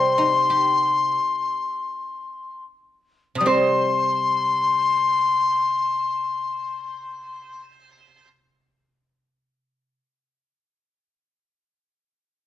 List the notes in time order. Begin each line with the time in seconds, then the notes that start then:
Already playing: C3 G3 C4 C5 C6
0.18 D#4
0.50 G4
3.35 C3 D#6
3.40 G3
3.45 C4 C5 C6